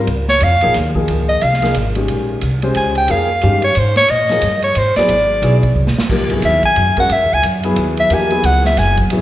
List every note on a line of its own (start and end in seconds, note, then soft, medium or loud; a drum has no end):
0.07 0.40 C#2 medium
0.07 ride medium
0.28 0.45 C#5 medium
0.28 snare soft
0.40 0.54 F2 loud
0.40 0.76 F5 loud
0.40 hi-hat pedal medium
0.40 ride medium
0.53 0.64 C#2 medium
0.61 0.74 A#1 medium
0.61 0.74 F3 medium
0.61 0.74 A#3 medium
0.61 0.74 D#4 medium
0.61 0.74 G#4 medium
0.61 ride soft
0.74 1.07 D#2 medium
0.74 snare soft
0.74 hi-hat pedal medium
0.74 ride medium
0.95 1.39 F3 medium
0.95 1.39 A#3 medium
0.95 1.39 D#4 medium
0.95 1.39 G#4 medium
0.95 kick medium
1.08 1.41 C#2 medium
1.08 ride medium
1.29 1.44 D#5 medium
1.41 1.74 C2 medium
1.41 1.75 F5 medium
1.41 hi-hat pedal medium
1.41 ride medium
1.53 snare soft
1.62 1.74 F3 medium
1.62 1.74 A#3 medium
1.62 1.74 D#4 medium
1.62 1.74 G#4 medium
1.62 snare soft
1.62 ride soft
1.74 2.07 G#1 medium
1.74 hi-hat pedal soft
1.74 ride medium
1.95 2.39 D#3 medium
1.95 2.39 G#3 medium
1.95 2.40 C#4 medium
1.95 2.40 G4 medium
1.95 ride soft
2.08 2.41 A#1 medium
2.08 ride medium
2.41 2.74 C2 medium
2.41 hi-hat pedal medium
2.41 ride medium
2.62 3.06 G#3 medium
2.62 3.06 C#4 medium
2.62 3.07 G4 medium
2.62 3.07 C5 medium
2.62 ride soft
2.75 3.08 C#2 medium
2.75 2.95 G#5 medium
2.75 hi-hat pedal medium
2.75 ride medium
2.95 3.13 G5 medium
2.95 ride soft
3.08 3.41 F2 medium
3.08 3.27 F3 medium
3.08 3.28 A#3 medium
3.08 3.28 D#4 medium
3.08 3.28 G#4 medium
3.08 3.64 F5 medium
3.08 ride medium
3.41 3.75 G2 loud
3.41 3.61 D#3 medium
3.41 3.61 G#3 medium
3.41 3.61 C#4 medium
3.41 3.61 G4 medium
3.41 ride medium
3.62 3.80 C#5 medium
3.62 ride soft
3.75 4.08 G#2 medium
3.75 3.96 C5 medium
3.75 hi-hat pedal medium
3.75 ride medium
3.96 4.12 C#5 loud
3.96 snare medium
3.96 ride soft
4.08 4.42 A#2 medium
4.08 4.63 D#5 medium
4.08 ride medium
4.29 4.41 F3 medium
4.29 4.42 A#3 medium
4.29 4.42 D#4 medium
4.29 4.42 G#4 medium
4.29 snare soft
4.29 ride soft
4.42 4.75 G2 medium
4.42 hi-hat pedal medium
4.42 ride medium
4.62 4.80 C#5 medium
4.62 ride medium
4.75 4.95 G#2 medium
4.75 4.96 C5 medium
4.75 hi-hat pedal medium
4.75 ride medium
4.96 5.09 F#3 medium
4.96 5.09 B3 medium
4.96 5.09 E4 medium
4.96 5.09 G#4 medium
4.96 5.73 D5 medium
4.96 muted upright bass stroke soft
4.96 snare soft
4.96 ride soft
5.08 5.41 G#1 medium
5.08 ride medium
5.42 5.75 B1 loud
5.42 5.61 F#3 medium
5.42 5.62 B3 medium
5.42 5.62 E4 medium
5.42 5.62 G#4 medium
5.42 hi-hat pedal medium
5.42 ride medium
5.63 kick medium
5.63 ride soft
5.75 5.95 C2 medium
5.87 snare medium
5.96 muted upright bass stroke soft
5.96 snare medium
6.09 6.42 C#2 medium
6.09 6.29 F3 medium
6.09 6.29 A#3 medium
6.09 6.29 D#4 medium
6.09 6.29 G4 medium
6.09 kick medium
6.09 crash medium
6.30 6.60 F#3 medium
6.30 6.60 B3 medium
6.30 6.60 E4 medium
6.30 6.60 G#4 medium
6.30 ride soft
6.42 6.62 D#2 loud
6.42 6.64 E5 medium
6.42 hi-hat pedal medium
6.42 ride medium
6.63 6.96 G#5 loud
6.63 kick soft
6.63 ride soft
6.76 7.09 F#2 medium
6.76 hi-hat pedal medium
6.76 ride medium
6.97 7.09 G#3 medium
6.97 7.09 C#4 medium
6.97 7.09 F#4 medium
6.97 7.09 A#4 medium
6.97 7.14 F#5 medium
6.97 kick medium
6.97 ride soft
7.09 7.22 G#2 medium
7.09 7.35 E5 loud
7.09 ride medium
7.22 7.32 E2 medium
7.33 7.42 C#2 medium
7.33 7.45 G#5 loud
7.43 7.76 F#2 medium
7.43 hi-hat pedal medium
7.43 ride medium
7.63 8.08 F#3 medium
7.63 8.08 B3 medium
7.63 8.09 E4 medium
7.63 8.09 G#4 medium
7.63 ride soft
7.76 8.09 D#2 medium
7.76 hi-hat pedal medium
7.76 ride medium
7.97 8.15 E5 medium
7.97 ride soft
8.10 8.42 E2 medium
8.10 8.29 F3 medium
8.10 8.29 A#3 medium
8.10 8.29 D#4 medium
8.10 8.30 G4 medium
8.10 8.47 G#5 medium
8.10 ride medium
8.30 9.03 F#3 medium
8.30 9.04 B3 medium
8.30 9.04 E4 medium
8.30 9.04 G#4 medium
8.30 ride soft
8.43 8.76 C#2 medium
8.43 8.66 F#5 medium
8.43 hi-hat pedal medium
8.43 ride medium
8.65 8.80 E5 medium
8.65 snare medium
8.76 9.10 F#1 medium
8.76 8.99 G#5 loud
8.76 snare soft
8.76 hi-hat pedal soft
8.76 ride medium
8.97 kick medium
8.97 ride soft
9.10 9.21 G#1 medium
9.10 9.21 F#3 medium
9.10 9.21 B3 medium
9.10 9.21 E4 medium
9.10 9.21 G#4 medium
9.10 ride medium